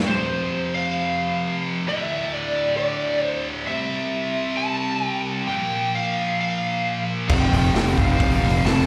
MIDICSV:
0, 0, Header, 1, 6, 480
1, 0, Start_track
1, 0, Tempo, 451128
1, 89, Time_signature, 4, 2, 24, 8
1, 9430, End_track
2, 0, Start_track
2, 0, Title_t, "Lead electric guitar"
2, 0, Program_c, 0, 29
2, 82, Note_on_c, 0, 72, 88
2, 794, Note_on_c, 0, 77, 110
2, 828, Note_off_c, 0, 72, 0
2, 1720, Note_off_c, 0, 77, 0
2, 2005, Note_on_c, 0, 76, 109
2, 2488, Note_off_c, 0, 76, 0
2, 2492, Note_on_c, 0, 74, 99
2, 2936, Note_off_c, 0, 74, 0
2, 2949, Note_on_c, 0, 74, 97
2, 3470, Note_off_c, 0, 74, 0
2, 3470, Note_on_c, 0, 72, 97
2, 3637, Note_off_c, 0, 72, 0
2, 3905, Note_on_c, 0, 76, 85
2, 4863, Note_on_c, 0, 81, 119
2, 4906, Note_off_c, 0, 76, 0
2, 5384, Note_off_c, 0, 81, 0
2, 5384, Note_on_c, 0, 79, 119
2, 5553, Note_off_c, 0, 79, 0
2, 5824, Note_on_c, 0, 79, 104
2, 6330, Note_on_c, 0, 77, 97
2, 6331, Note_off_c, 0, 79, 0
2, 6803, Note_off_c, 0, 77, 0
2, 6816, Note_on_c, 0, 77, 93
2, 7489, Note_off_c, 0, 77, 0
2, 7765, Note_on_c, 0, 79, 95
2, 8468, Note_off_c, 0, 79, 0
2, 8468, Note_on_c, 0, 77, 95
2, 8704, Note_off_c, 0, 77, 0
2, 8704, Note_on_c, 0, 77, 114
2, 9204, Note_on_c, 0, 81, 106
2, 9211, Note_off_c, 0, 77, 0
2, 9423, Note_off_c, 0, 81, 0
2, 9430, End_track
3, 0, Start_track
3, 0, Title_t, "Distorted electric guitar"
3, 0, Program_c, 1, 30
3, 81, Note_on_c, 1, 41, 94
3, 104, Note_on_c, 1, 48, 94
3, 119, Note_on_c, 1, 53, 100
3, 1992, Note_off_c, 1, 41, 0
3, 2002, Note_on_c, 1, 38, 99
3, 2004, Note_off_c, 1, 48, 0
3, 2011, Note_off_c, 1, 53, 0
3, 2027, Note_on_c, 1, 45, 96
3, 2043, Note_on_c, 1, 50, 111
3, 3909, Note_off_c, 1, 38, 0
3, 3913, Note_on_c, 1, 48, 103
3, 3924, Note_off_c, 1, 45, 0
3, 3932, Note_off_c, 1, 50, 0
3, 3936, Note_on_c, 1, 55, 105
3, 3954, Note_on_c, 1, 60, 97
3, 5822, Note_off_c, 1, 48, 0
3, 5826, Note_on_c, 1, 46, 87
3, 5838, Note_off_c, 1, 55, 0
3, 5847, Note_off_c, 1, 60, 0
3, 5851, Note_on_c, 1, 53, 105
3, 5872, Note_on_c, 1, 58, 94
3, 7742, Note_off_c, 1, 46, 0
3, 7752, Note_on_c, 1, 41, 99
3, 7765, Note_off_c, 1, 58, 0
3, 7772, Note_off_c, 1, 53, 0
3, 7776, Note_on_c, 1, 48, 99
3, 7793, Note_on_c, 1, 53, 101
3, 9430, Note_off_c, 1, 41, 0
3, 9430, Note_off_c, 1, 48, 0
3, 9430, Note_off_c, 1, 53, 0
3, 9430, End_track
4, 0, Start_track
4, 0, Title_t, "Distorted electric guitar"
4, 0, Program_c, 2, 30
4, 7768, Note_on_c, 2, 41, 103
4, 7779, Note_on_c, 2, 48, 105
4, 7780, Note_on_c, 2, 53, 114
4, 8230, Note_off_c, 2, 41, 0
4, 8232, Note_off_c, 2, 48, 0
4, 8243, Note_on_c, 2, 41, 86
4, 8245, Note_on_c, 2, 48, 94
4, 8249, Note_off_c, 2, 53, 0
4, 8253, Note_on_c, 2, 53, 98
4, 8477, Note_off_c, 2, 41, 0
4, 8480, Note_off_c, 2, 48, 0
4, 8490, Note_on_c, 2, 41, 83
4, 8492, Note_off_c, 2, 53, 0
4, 8492, Note_on_c, 2, 48, 92
4, 8496, Note_on_c, 2, 53, 92
4, 8717, Note_off_c, 2, 41, 0
4, 8721, Note_off_c, 2, 48, 0
4, 8729, Note_off_c, 2, 53, 0
4, 8730, Note_on_c, 2, 41, 97
4, 8734, Note_on_c, 2, 48, 110
4, 8741, Note_on_c, 2, 53, 115
4, 9191, Note_off_c, 2, 41, 0
4, 9200, Note_off_c, 2, 48, 0
4, 9201, Note_off_c, 2, 53, 0
4, 9203, Note_on_c, 2, 41, 89
4, 9212, Note_on_c, 2, 48, 100
4, 9214, Note_on_c, 2, 53, 106
4, 9430, Note_off_c, 2, 41, 0
4, 9430, Note_off_c, 2, 48, 0
4, 9430, Note_off_c, 2, 53, 0
4, 9430, End_track
5, 0, Start_track
5, 0, Title_t, "Fingered electric bass"
5, 0, Program_c, 3, 33
5, 7765, Note_on_c, 3, 29, 101
5, 7983, Note_off_c, 3, 29, 0
5, 7994, Note_on_c, 3, 29, 93
5, 8217, Note_off_c, 3, 29, 0
5, 8232, Note_on_c, 3, 29, 98
5, 8455, Note_off_c, 3, 29, 0
5, 8487, Note_on_c, 3, 29, 92
5, 8704, Note_off_c, 3, 29, 0
5, 8724, Note_on_c, 3, 29, 88
5, 8942, Note_off_c, 3, 29, 0
5, 8965, Note_on_c, 3, 29, 85
5, 9183, Note_off_c, 3, 29, 0
5, 9206, Note_on_c, 3, 29, 100
5, 9423, Note_off_c, 3, 29, 0
5, 9430, End_track
6, 0, Start_track
6, 0, Title_t, "Drums"
6, 7761, Note_on_c, 9, 49, 111
6, 7764, Note_on_c, 9, 36, 123
6, 7868, Note_off_c, 9, 49, 0
6, 7871, Note_off_c, 9, 36, 0
6, 8013, Note_on_c, 9, 46, 70
6, 8119, Note_off_c, 9, 46, 0
6, 8250, Note_on_c, 9, 46, 93
6, 8259, Note_on_c, 9, 38, 119
6, 8356, Note_off_c, 9, 46, 0
6, 8365, Note_off_c, 9, 38, 0
6, 8486, Note_on_c, 9, 36, 96
6, 8489, Note_on_c, 9, 46, 71
6, 8593, Note_off_c, 9, 36, 0
6, 8595, Note_off_c, 9, 46, 0
6, 8725, Note_on_c, 9, 46, 90
6, 8726, Note_on_c, 9, 36, 117
6, 8832, Note_off_c, 9, 46, 0
6, 8833, Note_off_c, 9, 36, 0
6, 8978, Note_on_c, 9, 46, 72
6, 9085, Note_off_c, 9, 46, 0
6, 9215, Note_on_c, 9, 46, 98
6, 9225, Note_on_c, 9, 38, 118
6, 9322, Note_off_c, 9, 46, 0
6, 9331, Note_off_c, 9, 38, 0
6, 9430, End_track
0, 0, End_of_file